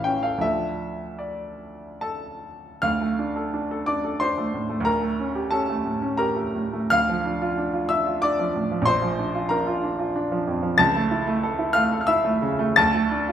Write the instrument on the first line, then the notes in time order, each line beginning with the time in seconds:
grand piano
Already playing: A1 E3 F5
0.04 C#4 G5
0.23 A4 F5
0.38 D2 F3 D4 A4 E5
1.19 D5
2.01 A4 A5
2.82 D2 F5 F6
3.01 A3
3.19 D4
3.36 A4
3.54 D4
3.71 A4
3.86 D4 D5 D6
4.04 A4
4.20 D4 C5 C6
4.38 A3
4.54 A2
4.69 A3
4.81 D2
4.85 A#4 A#5
5.02 A3
5.19 C#4
5.35 G4
5.51 C#4 A4 A5
5.69 A3
5.85 A2
6.02 C#4
6.17 G4 A#4 A#5
6.36 A3
6.55 A2
6.73 A3
6.90 D2 F5 F6
7.09 F3
7.25 D4
7.42 F4
7.58 D4
7.74 F4
7.89 D4 E5 E6
8.07 F4
8.22 D4 D5 D6
8.39 F3
8.55 A2
8.71 F3
8.82 A#1 C6
8.87 C5
9.02 F3
9.19 D4
9.35 F4
9.49 D4 A#4 A#5
9.67 F4
9.84 D4
9.99 F4
10.16 D4
10.32 F3
10.47 F2
10.63 F3
10.78 C#2 A5 A6
10.95 A3
11.11 E4
11.27 A3
11.43 A4
11.59 E4
11.73 A3 F5 F6
11.92 A4
12.01 F6
12.07 E4 E5 E6
12.25 A3
12.42 C#3
12.59 A3
12.76 D2 A5 A6
12.95 A3
13.11 D4
13.28 F4